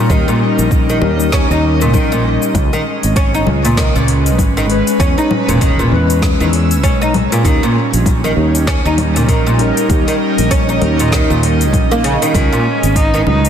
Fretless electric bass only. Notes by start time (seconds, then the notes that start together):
0.10 D#2
0.58 A#1
1.02 D#2
1.50 D#2
1.94 A#1
2.55 C#2
3.04 G#1
3.47 C#2
3.96 C#2
4.38 G#1
5.00 E2
5.48 E1
5.92 E2
6.40 E2
6.83 B1
7.45 D#2
7.94 A#1
8.37 D#2
8.85 D#2
9.28 A#1
9.89 D#2
10.38 A#1
10.82 D#2
11.30 D#2
11.73 A#1
12.35 C#2
12.83 G#1
13.26 C#2